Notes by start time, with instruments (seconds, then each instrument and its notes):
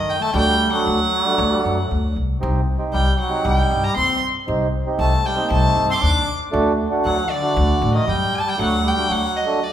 Already playing: trombone D#3, violin D#5
0.10 violin G5
0.21 trombone A3, violin A5
0.33 upright bass D2, trombone G3, accordion A3 D4 F#4, violin G5
0.41 trombone F#3
0.47 trombone G3
0.72 trombone F#3, accordion A3 D4 F#4, violin F#5
0.87 upright bass D2
1.25 accordion A3 D4 F#4
1.38 upright bass D2
1.65 upright bass F#2
1.91 upright bass D2
2.16 upright bass C2
2.41 upright bass C2, accordion C4 D#4 G4
2.78 accordion C4 D#4 G4
2.92 upright bass C2, trombone G3, violin G5
3.19 trombone F#3, violin F#5
3.29 accordion C4 D#4 G4
3.44 upright bass C2, trombone G3, violin G5
3.71 upright bass G2
3.84 violin A#5
3.96 upright bass D#2, trombone C4, violin C6
4.47 upright bass C2, accordion C4 D#4 G4
4.86 accordion C4 D#4 G4
4.99 upright bass C2, trombone A3, violin A5
5.26 trombone G3, violin G5
5.36 accordion C4 D#4 G4
5.43 trombone A#3
5.50 upright bass C2, trombone A3, violin A5
5.77 upright bass G2
5.88 trombone C4, violin C6
5.93 trombone C4, violin C6 D6
6.02 upright bass D#2, trombone D4, violin D6
6.52 upright bass D2, accordion A3 D4 F#4
6.90 accordion A3 D4 F#4
7.05 upright bass D2, trombone F#3, violin F#5
7.30 trombone D3, violin D5
7.42 accordion A3 D4 F#4
7.57 upright bass D2
7.82 upright bass A1
7.93 trombone D#3, violin D#5
8.06 upright bass F#2, trombone G3, violin G5
8.35 violin A5
8.45 trombone G3
8.49 violin G5
8.57 upright bass D2, trombone F#3, accordion A3 D4 F#4
8.62 violin F#5
8.84 trombone G3, violin G5
8.97 accordion A3 D4 F#4
9.09 upright bass D2, trombone F#3, violin F#5
9.36 violin D#5
9.46 accordion A3 D4 F#4
9.64 violin D5